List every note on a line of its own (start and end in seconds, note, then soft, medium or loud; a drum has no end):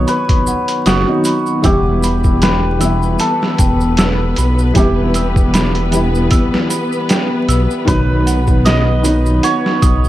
0.00 1.06 D#3 medium
0.00 1.07 F#3 medium
0.00 1.08 B3 medium
0.00 1.09 D#4 loud
0.00 1.85 C#5 loud
0.00 0.48 F#5 medium
0.00 0.07 B5 medium
0.00 0.86 D#6 loud
0.07 2.42 B4 loud
0.07 0.45 B5 medium
0.07 closed hi-hat medium
0.07 maracas medium
0.29 kick loud
0.29 closed hi-hat medium
0.47 0.85 F#5 medium
0.47 maracas loud
0.68 closed hi-hat medium
0.68 maracas soft
0.86 1.05 F#1 medium
0.86 1.71 F#4 loud
0.86 0.99 D#6 loud
0.86 snare loud
0.86 closed hi-hat medium
0.86 maracas medium
1.06 1.60 D#3 medium
1.06 1.60 F#3 medium
1.06 1.60 B3 medium
1.06 1.61 D#4 loud
1.24 1.63 B5 medium
1.24 closed hi-hat medium
1.24 maracas loud
1.46 maracas soft
1.62 3.17 E1 loud
1.62 2.76 E3 medium
1.62 2.77 G3 medium
1.62 2.78 B3 medium
1.62 10.09 B3 medium
1.62 4.76 G4 loud
1.62 10.09 B4 medium
1.62 1.77 E6 loud
1.62 kick loud
1.62 closed hi-hat medium
1.62 maracas soft
1.67 2.78 E4 loud
2.03 2.41 B5 medium
2.03 closed hi-hat medium
2.03 maracas medium
2.24 kick medium
2.24 maracas soft
2.42 5.16 B4 medium
2.42 2.80 G5 medium
2.42 snare loud
2.42 closed hi-hat medium
2.42 maracas medium
2.79 4.71 E3 medium
2.79 4.72 G3 medium
2.79 4.72 B3 medium
2.79 2.93 E6 medium
2.79 closed hi-hat medium
2.79 maracas loud
2.85 4.74 E4 medium
3.03 maracas soft
3.19 6.13 A4 medium
3.19 3.58 B5 medium
3.19 closed hi-hat medium
3.19 maracas soft
3.43 snare soft
3.58 4.34 E1 medium
3.58 3.97 G5 medium
3.58 kick medium
3.58 closed hi-hat medium
3.58 maracas loud
3.81 maracas soft
3.97 4.11 E6 loud
3.97 snare loud
3.97 closed hi-hat medium
3.97 maracas medium
4.36 4.72 B1 medium
4.36 4.75 B5 medium
4.36 closed hi-hat medium
4.36 maracas medium
4.59 maracas soft
4.74 6.29 E1 loud
4.74 5.88 E3 medium
4.74 5.88 G3 medium
4.74 5.90 B3 medium
4.74 7.90 G4 medium
4.74 5.14 G5 medium
4.74 kick loud
4.74 closed hi-hat medium
4.74 maracas medium
4.79 5.90 E4 loud
5.14 5.28 E6 loud
5.14 closed hi-hat medium
5.14 maracas medium
5.36 kick loud
5.36 maracas soft
5.54 5.91 B5 medium
5.54 snare loud
5.54 closed hi-hat medium
5.54 maracas soft
5.75 closed hi-hat soft
5.91 7.83 E3 medium
5.91 7.83 G3 medium
5.91 7.84 B3 medium
5.91 6.30 G5 medium
5.91 closed hi-hat medium
5.91 maracas medium
5.96 7.85 E4 loud
6.15 maracas soft
6.31 6.44 E6 loud
6.31 kick loud
6.31 closed hi-hat medium
6.31 maracas soft
6.54 snare medium
6.70 7.08 B5 medium
6.70 closed hi-hat medium
6.70 maracas loud
6.92 maracas soft
7.09 7.47 G5 medium
7.09 snare loud
7.09 closed hi-hat medium
7.09 maracas medium
7.48 7.67 B1 medium
7.48 7.61 E6 loud
7.48 closed hi-hat medium
7.48 maracas medium
7.71 maracas soft
7.85 9.41 B1 loud
7.85 8.99 D#3 loud
7.85 9.00 F#3 medium
7.85 9.01 B3 medium
7.85 10.09 B4 loud
7.85 8.25 B5 medium
7.85 kick loud
7.85 closed hi-hat medium
7.85 maracas medium
7.91 9.02 D#4 loud
8.26 8.64 F#5 medium
8.26 closed hi-hat medium
8.26 maracas medium
8.47 kick loud
8.47 maracas soft
8.65 10.09 D#5 loud
8.65 8.78 D#6 loud
8.65 snare loud
8.65 closed hi-hat medium
8.65 maracas medium
9.02 10.09 D#3 medium
9.02 10.09 F#3 medium
9.02 10.09 B3 medium
9.02 9.42 B5 medium
9.02 closed hi-hat medium
9.02 maracas medium
9.08 10.09 D#4 medium
9.26 maracas soft
9.43 10.09 C#5 loud
9.43 9.81 F#5 medium
9.43 closed hi-hat medium
9.43 maracas soft
9.66 snare soft
9.82 10.09 B1 loud
9.82 9.95 D#6 loud
9.82 kick loud
9.82 closed hi-hat medium
9.82 maracas medium
10.04 maracas soft